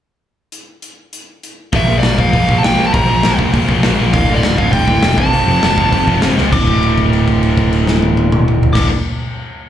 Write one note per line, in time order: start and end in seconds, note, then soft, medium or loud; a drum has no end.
0.52 closed hi-hat medium
0.82 closed hi-hat soft
1.13 closed hi-hat medium
1.43 closed hi-hat medium
1.72 1.85 A#1 medium
1.72 1.88 A#2 medium
1.72 1.88 F3 medium
1.72 1.87 A#3 medium
1.72 1.98 E5 medium
1.72 kick loud
1.72 open hi-hat medium
1.87 2.00 A#1 medium
1.87 2.03 A#2 medium
1.87 2.03 F3 medium
1.87 2.03 A#3 medium
1.99 2.14 A#1 medium
1.99 2.19 D5 medium
2.03 2.18 A#2 medium
2.03 2.18 F3 medium
2.03 2.17 A#3 medium
2.03 snare medium
2.03 open hi-hat medium
2.18 2.30 A#1 medium
2.18 2.31 A#2 medium
2.18 2.32 F3 medium
2.18 2.32 A#3 medium
2.18 2.58 F5 medium
2.18 kick medium
2.32 2.45 A#1 medium
2.32 2.48 A#2 medium
2.32 2.48 F3 medium
2.32 2.46 A#3 loud
2.32 kick medium
2.32 open hi-hat medium
2.48 2.60 A#1 medium
2.48 2.61 A#2 medium
2.48 2.62 F3 medium
2.48 2.62 A#3 medium
2.48 kick medium
2.58 2.77 A#2 medium
2.58 2.63 A5 medium
2.63 2.75 A#1 medium
2.63 2.77 F3 medium
2.63 2.76 A#3 medium
2.63 2.86 G5 medium
2.63 snare loud
2.63 open hi-hat medium
2.77 2.90 A#1 medium
2.77 2.92 A#2 medium
2.77 2.93 F3 medium
2.77 2.93 A#3 medium
2.87 2.93 A5 medium
2.93 3.06 A#1 medium
2.93 3.07 A#2 medium
2.93 3.08 F3 medium
2.93 3.07 A#3 medium
2.93 3.38 A#5 medium
2.93 kick loud
2.93 open hi-hat medium
3.08 3.21 A#1 medium
3.08 3.21 A#2 medium
3.08 3.22 F3 medium
3.08 3.22 A#3 medium
3.22 3.36 A#1 medium
3.22 3.38 A#2 medium
3.22 3.39 F3 medium
3.22 3.37 A#3 medium
3.22 snare loud
3.22 open hi-hat medium
3.38 3.50 A#1 medium
3.38 3.52 A#2 medium
3.38 3.53 F3 medium
3.38 3.53 A#3 medium
3.38 kick medium
3.53 3.65 A#1 medium
3.53 3.67 A#2 loud
3.53 3.68 F3 medium
3.53 3.67 A#3 loud
3.53 kick medium
3.53 open hi-hat medium
3.68 3.80 A#1 medium
3.68 3.82 A#2 medium
3.68 3.83 F3 medium
3.68 3.83 A#3 medium
3.68 kick medium
3.83 3.96 A#1 medium
3.83 3.98 A#2 medium
3.83 3.98 F3 medium
3.83 3.97 A#3 medium
3.83 snare loud
3.83 open hi-hat soft
3.98 4.11 A#1 medium
3.98 4.13 A#2 medium
3.98 4.14 F3 medium
3.98 4.13 A#3 loud
4.13 4.25 D1 medium
4.13 4.29 D2 medium
4.13 4.28 A2 medium
4.13 4.28 D3 loud
4.13 4.35 F5 medium
4.13 kick loud
4.13 open hi-hat medium
4.29 4.41 D1 medium
4.29 4.42 D2 medium
4.29 4.43 A2 medium
4.29 4.43 D3 medium
4.35 4.58 D5 medium
4.43 4.56 D1 medium
4.43 4.57 D2 medium
4.43 4.57 A2 medium
4.43 4.56 D3 medium
4.43 snare medium
4.43 open hi-hat medium
4.58 4.70 D1 medium
4.58 4.72 D2 medium
4.58 4.72 A2 medium
4.58 4.73 D3 medium
4.58 4.71 F5 medium
4.58 kick medium
4.71 4.85 D1 medium
4.71 4.86 D2 medium
4.71 4.86 A2 loud
4.71 4.86 D3 loud
4.71 5.19 G5 loud
4.71 kick medium
4.71 open hi-hat medium
4.87 4.99 D1 medium
4.87 5.01 D2 medium
4.87 5.02 A2 medium
4.87 5.02 D3 medium
4.87 kick medium
5.02 5.14 E1 medium
5.02 5.17 D2 medium
5.02 5.17 A2 medium
5.02 5.18 D3 medium
5.02 snare loud
5.02 open hi-hat medium
5.17 5.29 F1 medium
5.17 5.31 F2 medium
5.17 5.31 C3 medium
5.17 5.30 F3 loud
5.17 6.18 A5 medium
5.17 kick medium
5.32 5.44 F1 medium
5.32 5.45 F2 medium
5.32 5.46 C3 medium
5.32 5.46 F3 medium
5.32 open hi-hat medium
5.46 5.58 F1 medium
5.46 5.62 F2 medium
5.46 5.61 C3 medium
5.46 5.60 F3 medium
5.62 5.74 F1 medium
5.62 5.75 F2 medium
5.62 5.76 C3 medium
5.62 5.76 F3 medium
5.62 snare loud
5.62 open hi-hat medium
5.76 5.89 F1 medium
5.76 5.91 F2 medium
5.76 5.90 C3 medium
5.76 5.90 F3 medium
5.76 kick medium
5.91 6.04 F1 medium
5.91 6.06 F2 medium
5.91 6.06 C3 loud
5.91 6.06 F3 medium
5.91 kick medium
5.91 open hi-hat medium
6.07 6.19 F1 medium
6.07 6.22 F2 medium
6.07 6.22 C3 medium
6.07 6.21 F3 medium
6.07 kick medium
6.22 6.34 F1 medium
6.22 6.36 F2 medium
6.22 6.36 C3 medium
6.22 6.37 F3 medium
6.22 snare loud
6.22 open hi-hat soft
6.37 6.50 C#2 medium
6.37 6.51 F2 medium
6.37 6.52 C3 medium
6.37 6.52 F3 medium
6.37 snare medium
6.51 8.67 D1 medium
6.51 8.73 D2 medium
6.51 8.75 A2 medium
6.51 8.77 D3 loud
6.51 8.67 D6 medium
6.51 kick loud
6.51 crash medium
6.67 kick medium
6.67 crash soft
6.83 crash soft
6.98 kick medium
6.98 crash soft
7.13 crash soft
7.28 kick medium
7.28 crash soft
7.43 crash soft
7.57 kick medium
7.57 crash medium
7.73 crash soft
7.87 snare medium
8.02 high tom medium
8.17 high tom medium
8.32 mid tom medium
8.48 mid tom medium
8.63 floor tom medium
8.73 8.88 D1 medium
8.73 8.88 D2 medium
8.73 8.89 A2 medium
8.73 8.87 D6 medium
8.73 kick loud
8.73 snare medium
8.73 crash medium
8.77 8.90 D3 loud